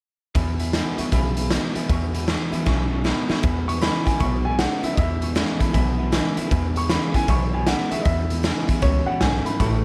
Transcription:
0.35 E2 B2 E5 G#5 B5, kick, closed hi-hat
0.59 E2 B2 E5 G#5 B5, closed hi-hat
0.73 E2 B2 E3 G#3 B3 E4 E5 G#5 B5, snare, closed hi-hat
0.98 E2 B2 B3 E4 E5 G#5 C#6, muted upright bass stroke, closed hi-hat
1.12 B1 E2 B2 C#3 E5 G#5 B5, kick, closed hi-hat
1.37 E2 C#3 E5 G#5 B5, closed hi-hat
1.50 E2 B2 E3 G#3 B3 E4 E5 G#5 B5, snare, closed hi-hat
1.75 E2 B2 B3 E4 E5 G#5 B5, muted upright bass stroke, closed hi-hat
1.89 E2 B2 E5 G#5 C#6, kick, closed hi-hat
2.14 E2 B2 E5 G#5 B5, closed hi-hat
2.27 E2 B2 E3 G#3 B3 E4 E5 G#5 C#6, snare, closed hi-hat
2.52 E2 B2 B3 E4 E5 G#5 B5, muted upright bass stroke, closed hi-hat
2.66 B1 E2 B2 C#3 E5 G#5 C#6, kick, snare
2.91 E2 C#3 E5 G#5 C#6
3.04 E2 B2 E3 G#3 B3 E4 E5 G#5 B5, snare
3.29 E2 B2 B3 E4 E5 G#5 C#6, muted upright bass stroke, snare
3.43 E2 B2 E5 G#5 B5, kick, closed hi-hat
3.68 E2 B2 E5 G#5 C#6, closed hi-hat
3.81 E2 C#3 E3 G#3 B3 E4 E5 G#5 B5, snare, closed hi-hat
4.06 E2 C#3 B3 E4 E5 G#5 B5, muted upright bass stroke, kick, closed hi-hat
4.20 B1 E2 B2 E5 G#5 B5 C#6, kick, closed hi-hat
4.45 E2 B2 E5 G#5 B5
4.59 E2 C#3 E3 G#3 B3 E4 E5 F#5 G#5 C#6, snare, closed hi-hat
4.83 E2 C#3 B3 E4 E5 G#5 B5, muted upright bass stroke, closed hi-hat
4.94 E2 B2 D#5 E5, kick, closed hi-hat
4.98 E5 G#5 B5
5.21 E2 B2 E5 G#5 C#6, closed hi-hat
5.35 E2 C#3 E3 G#3 B3 E4 E5 G#5 B5, snare, closed hi-hat
5.59 E2 C#3 B3 E4 E5 G#5 A5 B5, muted upright bass stroke, kick, closed hi-hat
5.73 B1 E2 B2 E5 G#5 B5, kick, closed hi-hat
5.98 E2 B2 E5 F#5 G#5 B5
6.11 E2 C#3 E3 G#3 B3 E4 E5 G#5 B5, snare, closed hi-hat
6.37 E2 C#3 B3 E4 E5 G#5 B5, muted upright bass stroke, closed hi-hat
6.50 E2 B2 E5 G#5 B5, kick, closed hi-hat
6.76 E2 B2 E5 G#5 B5 C#6, closed hi-hat
6.89 E2 C#3 E3 G#3 B3 E4 E5 G#5 B5, snare, closed hi-hat
7.14 E2 C#3 B3 E4 E5 G#5 B5, kick, closed hi-hat
7.28 B1 E2 B2 E5 G#5 B5 C#6, kick, closed hi-hat
7.53 E2 B2 E5 G#5 B5
7.67 E2 C#3 E3 G#3 B3 E4 E5 F#5 G#5 B5, snare, closed hi-hat
7.91 E2 C#3 B3 E4 E5 G#5 C#6, muted upright bass stroke, closed hi-hat
8.01 E2 D#5 E5
8.06 E2 B2 E5 G#5 B5, kick, closed hi-hat
8.30 E2 B2 E5 G#5 B5, closed hi-hat
8.43 E2 C#3 E3 G#3 B3 E4 E5 G#5 B5, snare, closed hi-hat
8.68 E2 C#3 B3 E4 E5 G#5 B5, muted upright bass stroke, kick, closed hi-hat
8.82 C#2 E2 F#2 B2 C#5 E5 G#5 C#6, kick, closed hi-hat
9.06 E2 B2 E5 F#5 G#5 B5, muted upright bass stroke
9.20 B1 E2 G#2 C#3 E5 G#5 C#6, snare, closed hi-hat
9.46 E2 C#3 E5 G#5 B5, closed hi-hat
9.60 A1 A2 E3 E5 A5 C#6, kick, closed hi-hat

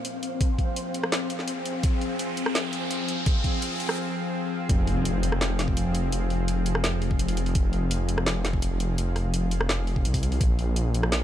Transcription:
Already playing: F3 C4 G#4 C5 F5, riser
0.05 closed hi-hat
0.23 closed hi-hat
0.41 kick, closed hi-hat
0.59 kick, closed hi-hat
0.76 closed hi-hat
0.94 closed hi-hat
1.03 cross-stick
1.12 snare, closed hi-hat
1.30 closed hi-hat
1.39 snare
1.48 closed hi-hat
1.66 closed hi-hat
1.83 kick, closed hi-hat
2.01 closed hi-hat
2.19 closed hi-hat
2.37 closed hi-hat
2.46 cross-stick
2.55 snare, closed hi-hat
2.73 closed hi-hat
2.91 closed hi-hat
3.08 closed hi-hat
3.26 kick, closed hi-hat
3.44 kick, closed hi-hat
3.62 closed hi-hat
3.80 closed hi-hat
3.89 cross-stick
4.69 F1, kick, closed hi-hat, impact
4.87 open hi-hat
5.05 closed hi-hat
5.23 closed hi-hat
5.32 cross-stick
5.41 snare, closed hi-hat
5.59 snare, closed hi-hat
5.68 kick
5.77 closed hi-hat
5.95 closed hi-hat
6.12 F1, closed hi-hat
6.30 open hi-hat
6.48 closed hi-hat
6.66 closed hi-hat
6.75 cross-stick
6.84 snare, closed hi-hat
7.02 open hi-hat
7.11 kick
7.19 closed hi-hat
7.28 open hi-hat
7.37 closed hi-hat
7.46 open hi-hat
7.55 F1, kick, closed hi-hat
7.73 open hi-hat
7.91 closed hi-hat
8.09 closed hi-hat
8.18 cross-stick
8.26 snare, closed hi-hat
8.45 snare, closed hi-hat
8.53 kick
8.62 closed hi-hat
8.80 closed hi-hat
8.98 F1, closed hi-hat
9.16 cross-stick, open hi-hat
9.34 closed hi-hat
9.51 closed hi-hat
9.61 cross-stick
9.69 snare, closed hi-hat
9.87 open hi-hat
9.96 kick
10.05 C2, closed hi-hat
10.14 kick, open hi-hat
10.23 closed hi-hat
10.32 open hi-hat
10.40 A#1 A#2, kick, closed hi-hat
10.54 A#3
10.59 open hi-hat
10.76 closed hi-hat
10.94 closed hi-hat
11.03 cross-stick
11.12 snare, closed hi-hat

